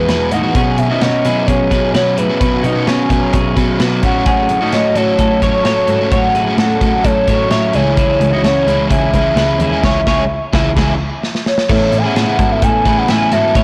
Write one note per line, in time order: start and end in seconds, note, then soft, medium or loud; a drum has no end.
0.00 0.33 B4 medium
0.07 0.27 E2 medium
0.07 0.43 E3 medium
0.07 0.43 G#3 medium
0.07 0.42 B3 medium
0.07 0.42 F#4 medium
0.07 0.32 G#4 medium
0.07 0.32 B4 medium
0.07 snare medium
0.07 closed hi-hat medium
0.31 0.51 A2 medium
0.31 0.56 D#4 medium
0.31 0.55 F#4 medium
0.31 0.54 F#5 medium
0.31 closed hi-hat medium
0.43 0.55 E3 soft
0.43 0.55 G#3 soft
0.43 0.54 B3 soft
0.43 0.55 F#4 soft
0.55 0.90 B2 medium
0.55 0.74 B2 medium
0.55 0.90 F#3 medium
0.55 0.90 B3 medium
0.55 0.89 C#4 medium
0.55 0.88 C#4 medium
0.55 0.88 F#4 medium
0.55 0.88 G#4 medium
0.55 0.80 F#5 loud
0.55 kick loud
0.55 closed hi-hat medium
0.78 0.97 B2 medium
0.78 1.02 E5 medium
0.78 closed hi-hat medium
0.90 1.24 B3 soft
0.90 1.25 C#4 medium
0.90 1.02 D#4 medium
0.90 1.24 F#4 medium
0.90 1.02 F#4 medium
1.00 1.21 B2 medium
1.00 1.26 C#4 medium
1.00 1.25 F#4 medium
1.00 1.47 D#5 medium
1.00 snare loud
1.00 closed hi-hat medium
1.24 1.44 B2 medium
1.24 1.70 F#3 medium
1.24 1.70 B3 medium
1.24 1.71 C#4 medium
1.24 1.48 E4 soft
1.24 1.72 F#4 medium
1.24 1.47 G#4 medium
1.24 closed hi-hat medium
1.48 1.67 B2 loud
1.48 1.72 C#4 medium
1.48 1.71 G#4 medium
1.48 1.91 C#5 medium
1.48 kick medium
1.48 closed hi-hat medium
1.70 1.90 B2 medium
1.70 1.93 F#3 medium
1.70 1.94 B3 medium
1.70 1.94 C#4 medium
1.70 1.95 F#4 medium
1.70 1.95 G#4 medium
1.70 1.94 B4 medium
1.70 kick medium
1.70 closed hi-hat medium
1.94 2.13 B2 loud
1.94 2.29 F#3 medium
1.94 2.29 B3 medium
1.94 2.29 C#4 medium
1.94 2.17 F#4 medium
1.94 2.28 F#4 medium
1.94 2.18 B4 medium
1.94 2.20 C#5 medium
1.94 snare loud
1.94 closed hi-hat medium
2.17 2.37 A2 medium
2.17 2.40 E4 medium
2.17 2.41 G#4 medium
2.17 2.87 B4 medium
2.17 closed hi-hat medium
2.29 2.40 B3 soft
2.29 2.40 C#4 medium
2.29 2.40 F#4 medium
2.40 2.75 B2 medium
2.40 2.60 B2 medium
2.40 2.76 F#3 medium
2.40 2.76 B3 medium
2.40 2.75 C#4 medium
2.40 2.63 F#4 medium
2.40 2.74 F#4 medium
2.40 2.64 B4 medium
2.40 kick loud
2.40 closed hi-hat medium
2.63 2.83 B2 medium
2.63 2.87 D#4 medium
2.63 2.86 F#4 medium
2.63 closed hi-hat medium
2.75 3.09 B3 soft
2.75 3.10 C#4 soft
2.75 3.10 F#4 medium
2.87 3.06 B2 loud
2.87 3.31 C#4 medium
2.87 3.31 G#4 medium
2.87 snare loud
2.87 closed hi-hat medium
3.10 3.29 B2 medium
3.10 3.56 F#3 medium
3.10 3.56 B3 medium
3.10 3.57 C#4 medium
3.10 3.58 F#4 medium
3.10 kick medium
3.10 closed hi-hat medium
3.33 3.53 B2 medium
3.33 3.57 C#4 medium
3.33 3.56 G#4 medium
3.33 kick medium
3.33 closed hi-hat medium
3.56 3.76 B2 loud
3.56 3.78 F#3 medium
3.56 3.79 B3 medium
3.56 3.79 C#4 medium
3.56 3.80 F#4 medium
3.56 3.80 G#4 soft
3.56 3.79 B4 medium
3.56 kick medium
3.56 closed hi-hat medium
3.80 3.99 B2 loud
3.80 4.03 F#3 medium
3.80 4.03 B3 medium
3.80 4.03 C#4 medium
3.80 4.02 F#4 medium
3.80 4.04 F#4 medium
3.80 4.03 B4 medium
3.80 snare loud
3.80 closed hi-hat medium
4.03 4.41 A2 medium
4.03 4.61 A2 medium
4.03 4.62 F#3 medium
4.03 4.62 A3 medium
4.03 4.26 C#4 medium
4.03 4.61 C#4 medium
4.03 4.26 F#4 medium
4.03 4.60 F#4 medium
4.03 4.25 F#5 loud
4.03 kick medium
4.03 closed hi-hat medium
4.26 4.59 C#4 medium
4.26 4.59 G#4 medium
4.26 4.70 F#5 loud
4.26 kick loud
4.26 closed hi-hat medium
4.49 4.68 A2 medium
4.49 closed hi-hat medium
4.61 4.95 A3 soft
4.61 4.95 C#4 soft
4.61 4.73 D#4 soft
4.61 4.96 F#4 soft
4.61 4.72 F#4 medium
4.72 4.92 A2 medium
4.72 4.96 C#4 medium
4.72 4.96 F#4 medium
4.72 4.97 D#5 medium
4.72 snare loud
4.72 closed hi-hat medium
4.95 5.15 A2 medium
4.95 5.41 F#3 medium
4.95 5.42 A3 medium
4.95 5.43 C#4 medium
4.95 5.43 F#4 medium
4.95 5.19 F#4 soft
4.95 5.18 A4 medium
4.95 6.11 C#5 loud
4.95 closed hi-hat medium
5.19 5.38 A2 medium
5.19 5.43 F#4 medium
5.19 5.42 A4 medium
5.19 kick medium
5.19 closed hi-hat medium
5.42 5.61 A2 medium
5.42 5.64 F#3 medium
5.42 5.65 A3 medium
5.42 5.65 C#4 medium
5.42 5.66 F#4 medium
5.42 5.65 A4 medium
5.42 5.65 C#5 medium
5.42 kick medium
5.42 closed hi-hat medium
5.65 5.84 A2 medium
5.65 6.00 F#3 medium
5.65 6.00 A3 medium
5.65 6.00 C#4 medium
5.65 5.99 F#4 medium
5.65 5.88 A4 medium
5.65 5.89 C#5 medium
5.65 snare loud
5.65 closed hi-hat medium
5.88 6.07 G#2 medium
5.88 6.12 F#4 medium
5.88 6.12 A4 medium
5.88 closed hi-hat medium
6.01 6.11 A3 soft
6.01 6.11 C#4 soft
6.01 6.12 F#4 medium
6.12 6.31 A2 medium
6.12 6.47 A2 medium
6.12 6.47 F#3 medium
6.12 6.47 A3 medium
6.12 6.46 C#4 medium
6.12 6.45 F#4 medium
6.12 6.35 A4 medium
6.12 6.35 C#5 medium
6.12 6.55 F#5 loud
6.12 kick loud
6.12 closed hi-hat medium
6.34 6.54 A2 medium
6.34 6.59 E4 medium
6.34 6.58 G#4 medium
6.34 closed hi-hat medium
6.46 6.81 A3 soft
6.46 6.82 C#4 medium
6.46 6.81 F#4 medium
6.58 6.77 A2 loud
6.58 7.03 F#4 medium
6.58 7.02 A4 medium
6.58 7.05 F#5 loud
6.58 snare loud
6.58 closed hi-hat medium
6.81 7.00 A2 medium
6.81 7.27 F#3 medium
6.81 7.28 A3 medium
6.81 7.29 C#4 medium
6.81 7.29 F#4 medium
6.81 kick medium
6.81 closed hi-hat medium
7.04 7.24 A2 medium
7.04 7.28 F#4 medium
7.04 7.28 A4 medium
7.04 7.51 C#5 loud
7.04 kick medium
7.04 closed hi-hat medium
7.28 7.47 A2 loud
7.28 7.51 F#3 medium
7.28 7.51 A3 medium
7.28 7.52 C#4 medium
7.28 7.52 F#4 medium
7.28 7.51 A4 medium
7.28 7.50 C#5 medium
7.28 kick medium
7.28 closed hi-hat medium
7.50 7.70 A2 loud
7.50 7.75 F#3 medium
7.50 7.75 A3 medium
7.50 7.75 C#4 medium
7.50 7.74 A4 medium
7.50 7.74 C#5 medium
7.50 7.76 E5 medium
7.50 snare medium
7.50 closed hi-hat medium
7.54 7.76 F#4 medium
7.73 8.13 C#2 medium
7.73 8.33 C#3 medium
7.73 8.67 E3 medium
7.73 8.33 G#3 medium
7.73 8.33 C#4 medium
7.73 7.97 E4 medium
7.73 8.32 E4 medium
7.73 7.97 G#4 medium
7.73 8.43 C#5 medium
7.73 closed hi-hat medium
7.97 8.31 E4 medium
7.97 8.30 G#4 medium
7.97 kick loud
7.97 closed hi-hat medium
8.20 8.40 C#2 medium
8.20 closed hi-hat medium
8.32 8.66 G#3 soft
8.32 8.67 C#4 medium
8.32 8.44 D#4 medium
8.32 8.67 E4 medium
8.32 8.43 F#4 medium
8.43 8.63 C#2 medium
8.43 8.68 C#4 medium
8.43 8.67 F#4 medium
8.43 8.87 C#5 medium
8.43 snare loud
8.43 closed hi-hat medium
8.67 8.86 C#2 medium
8.67 9.14 E3 medium
8.67 9.14 G#3 medium
8.67 9.15 C#4 medium
8.67 8.90 E4 soft
8.67 9.16 E4 medium
8.67 8.89 G#4 medium
8.67 closed hi-hat medium
8.90 9.10 C#2 loud
8.90 9.14 E4 medium
8.90 9.14 G#4 medium
8.90 11.19 E5 medium
8.90 kick medium
8.90 closed hi-hat medium
9.14 9.33 C#2 medium
9.14 9.36 E3 medium
9.14 9.37 G#3 medium
9.14 9.37 C#4 medium
9.14 9.38 E4 medium
9.14 9.37 G#4 medium
9.14 9.36 B4 medium
9.14 kick medium
9.14 closed hi-hat medium
9.36 9.55 C#2 loud
9.36 9.72 E3 medium
9.36 9.72 G#3 medium
9.36 9.72 C#4 medium
9.36 9.71 E4 medium
9.36 9.60 G#4 medium
9.36 9.60 B4 medium
9.36 snare loud
9.36 closed hi-hat medium
9.59 9.79 D#2 medium
9.59 9.84 E4 medium
9.59 9.84 G#4 medium
9.59 closed hi-hat medium
9.72 9.83 G#3 soft
9.72 9.83 C#4 medium
9.72 9.83 E4 medium
9.83 9.99 C#2 loud
9.83 9.99 C#3 medium
9.83 9.99 E3 loud
9.83 10.00 G#3 medium
9.83 10.00 C#4 loud
9.83 10.00 E4 medium
9.83 10.00 G#4 medium
9.83 10.00 C#5 medium
9.83 kick loud
9.83 snare medium
9.83 crash medium
10.07 10.23 C#2 medium
10.07 10.24 G#3 medium
10.07 10.23 C#4 medium
10.07 10.23 E4 loud
10.07 10.23 G#4 medium
10.07 10.23 C#5 medium
10.07 kick medium
10.07 snare loud
10.53 10.69 C#2 medium
10.53 10.69 E3 medium
10.53 10.70 G#3 medium
10.53 10.70 C#4 medium
10.53 10.70 E4 medium
10.53 10.69 G#4 medium
10.53 kick loud
10.53 snare loud
10.76 10.92 C#2 loud
10.76 10.92 E3 medium
10.76 10.93 G#3 medium
10.76 10.93 C#4 medium
10.76 10.93 E4 medium
10.76 10.93 E4 loud
10.76 10.93 G#4 medium
10.76 kick medium
10.76 snare loud
10.76 crash medium
11.23 snare soft
11.35 snare medium
11.46 11.69 C#5 medium
11.46 snare medium
11.58 snare medium
11.69 12.04 A2 medium
11.69 11.89 A2 medium
11.69 12.04 E3 medium
11.69 12.04 B3 medium
11.69 12.04 C#4 medium
11.69 12.03 E4 medium
11.69 12.02 A4 medium
11.69 11.99 C#5 medium
11.69 kick loud
11.69 crash medium
11.92 12.12 A2 medium
11.92 closed hi-hat medium
11.98 12.07 G#5 medium
12.04 12.27 B3 soft
12.04 12.26 C#4 medium
12.04 12.25 E4 medium
12.04 12.15 E4 medium
12.04 12.15 G#4 medium
12.04 12.53 F#5 loud
12.16 12.35 A2 medium
12.16 12.39 E4 medium
12.16 12.39 G#4 medium
12.16 snare loud
12.16 closed hi-hat medium
12.26 12.85 B3 soft
12.26 12.86 C#4 soft
12.26 12.87 E4 soft
12.39 12.58 G#2 medium
12.39 12.63 F#4 soft
12.39 12.62 A4 medium
12.39 kick medium
12.39 closed hi-hat medium
12.52 12.64 E5 medium
12.62 12.82 A2 medium
12.62 12.86 E4 medium
12.62 12.86 A4 medium
12.62 12.99 G#5 loud
12.62 kick medium
12.62 closed hi-hat loud
12.85 13.04 A2 medium
12.85 13.07 E3 medium
12.85 13.08 B3 medium
12.85 13.08 C#4 medium
12.85 13.09 E4 medium
12.85 13.09 G#4 medium
12.85 13.08 B4 medium
12.85 kick medium
12.85 closed hi-hat medium
12.98 13.11 F#5 loud
13.08 13.28 A2 medium
13.08 13.30 E3 medium
13.08 13.31 B3 medium
13.08 13.31 C#4 medium
13.08 13.32 E4 medium
13.08 13.33 E4 medium
13.08 13.32 B4 medium
13.08 13.32 G#5 loud
13.08 snare loud
13.08 closed hi-hat medium
13.31 13.51 G#2 medium
13.31 13.54 E3 medium
13.31 13.54 B3 medium
13.31 13.55 C#4 medium
13.31 13.55 E4 medium
13.31 13.56 F#4 medium
13.31 13.55 A4 medium
13.31 13.64 E5 medium
13.31 closed hi-hat medium
13.55 13.64 A2 medium
13.55 13.64 A2 loud
13.55 13.64 E3 medium
13.55 13.64 B3 medium
13.55 13.64 C#4 medium
13.55 13.64 E4 medium
13.55 13.64 A4 medium
13.55 13.64 C#5 medium
13.55 kick loud
13.55 closed hi-hat medium